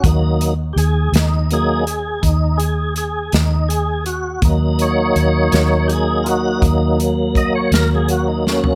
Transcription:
<<
  \new Staff \with { instrumentName = "Tonewheel organ" } { \time 12/8 \key ees \minor \tempo 4. = 55 r4 <g' aes'>8 ees'8 aes'8 aes'8 ees'8 aes'8 aes'8 ees'8 aes'8 ges'8 | r8 des''4. <g' aes'>8 <f' ges'>8 ees'8 r8 ees''16 des''16 bes'16 aes'16 ges'16 ees'16 des'8 | }
  \new Staff \with { instrumentName = "Tonewheel organ" } { \time 12/8 \key ees \minor <ges bes ees'>8 r4. <ges bes ees'>8 r2. r8 | <ges bes ees'>1. | }
  \new Staff \with { instrumentName = "Fingered electric bass" } { \clef bass \time 12/8 \key ees \minor ees,4 ees,8 ees,4. ees,4. ees,4. | ees,4 ees,8 ees,4. ees,4. ees,4. | }
  \new DrumStaff \with { instrumentName = "Drums" } \drummode { \time 12/8 <hh bd>8 hh8 hh8 <hh sn>8 hh8 hh8 <hh bd>8 hh8 hh8 <hh sn>8 hh8 hh8 | <hh bd>8 hh8 hh8 <hh sn>8 hh8 hh8 <hh bd>8 hh8 <hh bd>8 <hh sn>8 hh8 sn16 tomfh16 | }
>>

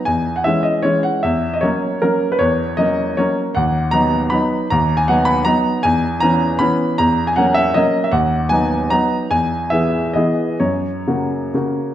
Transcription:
<<
  \new Staff \with { instrumentName = "Grand piano" } { \time 3/4 \key b \major \tempo 4 = 154 gis''8. fis''16 e''8 dis''8 cis''8 fis''8 | e''8. dis''16 cis''4 ais'8. b'16 | cis''4 dis''4 cis''8 r8 | fis''4 ais''4 b''4 |
ais''8. gis''16 fis''8 b''8 ais''4 | gis''4 ais''4 b''4 | ais''8. gis''16 fis''8 e''8 dis''8. e''16 | fis''4 gis''4 ais''4 |
gis''4 e''4 dis''4 | cis''2. | }
  \new Staff \with { instrumentName = "Grand piano" } { \time 3/4 \key b \major e,4 <e gis cis'>4 <e gis cis'>4 | e,4 <fis ais cis'>4 <fis ais cis'>4 | e,4 <fis ais cis'>4 <fis ais cis'>4 | dis,4 <fis b dis'>4 <fis b dis'>4 |
dis,4 <fis b dis'>4 <fis b dis'>4 | e,4 <e b cis'>4 <e b cis'>4 | e,4 <fis ais cis'>4 <fis ais cis'>4 | dis,4 <fis b dis'>4 <fis b dis'>4 |
e,4 <e b gis'>4 <e b gis'>4 | fis,4 <cis ais fis'>4 <cis ais fis'>4 | }
>>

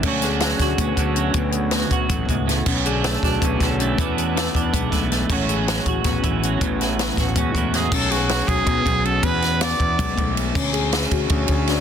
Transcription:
<<
  \new Staff \with { instrumentName = "Trumpet" } { \time 7/8 \key d \lydian \tempo 4 = 160 r2. r8 | r2. r8 | r2. r8 | r2. r8 |
r2. r8 | r2 fis'4 gis'8 | a'8 fis'4 gis'4. a'8 | b'4 d''2 r8 |
r2. r8 | }
  \new Staff \with { instrumentName = "Handpan" } { \time 7/8 \key d \lydian cis'8 gis'4 fis'8 b4 cis'8 | b4 b4 a8 b4 | cis'8 gis'4 fis'8 b4 cis'8 | b4 b4 gis8 a4 |
cis'8 gis'4 fis'8 b4 cis'8 | b4 b4 gis8 a4 | cis'8 gis'4 fis'8 b4 cis'8 | b4 b4 gis8 a4 |
cis'8 gis'4 fis'8 cis'4 d'8 | }
  \new Staff \with { instrumentName = "Clean electric guitar" } { \clef bass \time 7/8 \key d \lydian << { <d fis cis' fis'>4 fis8 fis'8 cis'4 fis8~ | fis4 fis8 fis'2 | r4 a8 d'8 cis'4 a8 | <e a b d'>4 a8 d'8 b4 a8 |
<e fis cis' fis'>4 fis8 fis'8 cis'4 fis8~ | fis4 fis8 fis'8 cis'4 fis8~ | fis2.~ fis8 | r2. r8 |
r2. r8 | } \\ { d,8 d2 d4 | d,2 fis,8 gis,8 a,8 | b,8 d2 d4 | e,8 e2 e4 |
a,8 e2 e4 | a,8 e2 e4 | r2. r8 | r2. r8 |
r2. r8 | } >> }
  \new Staff \with { instrumentName = "Fingered electric bass" } { \clef bass \time 7/8 \key d \lydian d,4. d,8 d,8 d,4 | d,4. d,8 a,,8 cis,4 | b,,4. b,,8 b,,8 b,,4 | e,4. e,8 b,,8 b,,4 |
a,,4. a,,8 a,,8 a,,4 | a,,4. a,,8 e,8 e,4 | b,,4. b,,8 b,,8 b,,4 | e,4. e,8 b,,8 b,,4 |
d,4. d,8 d,8 d,4 | }
  \new DrumStaff \with { instrumentName = "Drums" } \drummode { \time 7/8 <cymc bd>8 <hh sn>8 <hh sn>8 <hh bd sn>8 <hh bd>8 <hh bd>8 hh8 | <hh bd>8 hh8 <hh sn>8 <hh bd>8 <hh bd>8 <hh bd>8 <hh sn>8 | <cymc bd>8 hh8 <hh sn>8 <hh bd sn>8 <hh bd>8 <hh bd sn>8 hh8 | <hh bd>8 hh8 <hh sn>8 <hh bd>8 <hh bd>8 <hh bd sn>8 <hh sn>8 |
<cymc bd>8 hh8 <hh sn>8 <hh bd>8 <hh bd sn>8 <hh bd>8 hh8 | <hh bd>8 <hh sn>8 <hh sn>8 <hh bd sn>8 <hh bd>8 <hh bd>8 <hh sn>8 | <cymc bd>8 <cymr sn>8 <cymr sn>8 <bd cymr>8 <bd cymr>8 <bd cymr>8 cymr8 | <bd cymr>8 <cymr sn>8 <cymr sn>8 <bd cymr>8 <bd cymr>8 <bd cymr>8 cymr8 |
<cymc bd>8 cymr8 <cymr sn>8 <bd cymr>8 <bd cymr>8 <bd cymr>8 <cymr sn>8 | }
>>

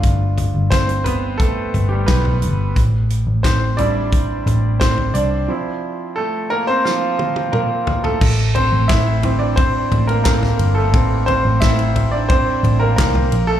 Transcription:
<<
  \new Staff \with { instrumentName = "Grand piano" } { \time 4/4 \key a \phrygian \tempo 4 = 88 << { r4 <c' c''>8 <b b'>8 <a a'>8. <g g'>16 <b b'>8. r16 | r4 <c' c''>8 <d' d''>8 r4 <c' c''>8 <d' d''>8 | r4 <a a'>8 <bes bes'>16 <c' c''>16 <f f'>4 <bes bes'>8. <a a'>16~ | <a a'>8 <c' c''>8 <e' e''>8. <d' d''>16 <c' c''>8. <bes bes'>16 <bes bes'>8. <a a'>16~ |
<a a'>8 <c' c''>8 <e' e''>8. <d' d''>16 <c' c''>8. <bes bes'>16 <bes bes'>8. <a a'>16 | } \\ { <a d' f'>2.~ <a d' f'>8 r8 | r4. <g c' e'>8 r2 | <f c' e'>1 | r4. <e c'>4. <e c' a'>8 r8 |
<e a c'>8 r2. r8 | } >> }
  \new Staff \with { instrumentName = "Picked electric bass" } { \clef bass \time 4/4 \key a \phrygian g,,8. g,,4.~ g,,16 g,,8 b,,8 g,,8 | a,,8. a,,4.~ a,,16 a,,4 c,8 | r1 | a,,8. a,,4.~ a,,16 a,,4 g,,8 |
a,,8. a,,4.~ a,,16 a,,8 c,8 bes,,8 | }
  \new DrumStaff \with { instrumentName = "Drums" } \drummode { \time 4/4 <hh bd>8 <hh tomfh>8 <hc hh bd sn>16 hh16 <hh tomfh>8 <hh bd>8 <hh tomfh>8 <hc hh bd sn>16 tomfh16 hh8 | <hh bd>8 hh8 <hc hh bd sn>8 <hh tomfh>8 <hh bd>8 <hh tomfh>8 <hc hh bd sn>16 tomfh16 hh8 | r4 r4 sn8 tommh16 tommh16 toml8 tomfh16 tomfh16 | <cymc bd>8 <cymr tomfh>8 <hc bd cymr sn>8 <cymr tomfh>8 <bd cymr>8 <cymr tomfh>16 cymr16 <hc bd cymr sn>16 <sn tomfh>16 cymr8 |
<bd cymr>8 <cymr tomfh>8 <hc bd cymr sn>16 cymr16 <cymr tomfh>8 <bd cymr>8 <cymr tomfh>8 <hc bd cymr sn>16 tomfh16 cymr8 | }
>>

